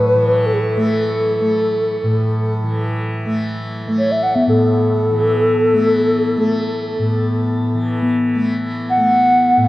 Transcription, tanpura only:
Already playing: A2 E3 A3
0.15 E3
0.77 A3
1.40 A3
2.03 A2
2.64 E3
3.26 A3
3.88 A3
4.47 A2
5.10 E3
5.73 A3
6.37 A3
6.99 A2
7.74 E3
8.35 A3
8.97 A3
9.57 A2

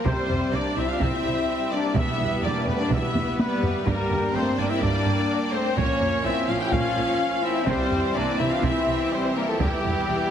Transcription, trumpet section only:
0.05 C5
0.53 D5
0.77 E5
0.90 F5
1.01 E5
1.72 D5
1.96 E5
2.44 D5
2.68 B4
2.80 D5
2.91 E5
3.39 B4
3.86 A#4
4.34 C5
4.57 D5
4.69 E5
4.80 D5
5.52 C5
5.76 C#5
6.24 E5
6.47 F5
6.60 G5
6.71 F5
7.44 E5
7.68 C5
8.15 D5
8.39 E5
8.50 F5
8.62 E5
9.11 C5
9.35 A#4
9.47 A4
9.59 G4

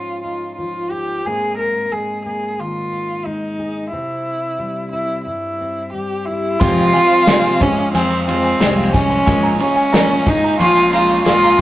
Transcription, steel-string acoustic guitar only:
Already playing: G#2 F3 C#4 D#4 G#4
0.24 D#4
0.59 F3
0.92 F4
1.25 G#2 G#3 A#3 C4
1.92 G#3
2.26 A#3
2.58 D#3
2.92 C4
3.26 G#3
3.59 G#4
3.93 C3 C4
4.59 G3
4.93 C4
5.26 G2
5.61 C4
5.93 G3
6.28 G4

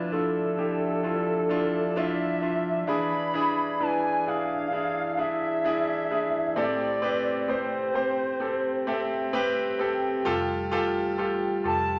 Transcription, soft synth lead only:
Already playing: B4
0.13 A4
1.97 E5
2.89 B5
3.82 G#5
4.28 F5
5.20 E5
6.58 D5
7.51 C5
11.67 A5

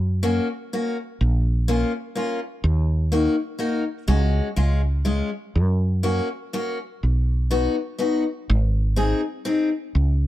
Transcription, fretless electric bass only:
Already playing: F#2
1.21 A#1
2.64 D#2
4.08 C#2
4.57 C#2
5.55 F#2
7.03 B1
8.50 G#1
9.95 C#2

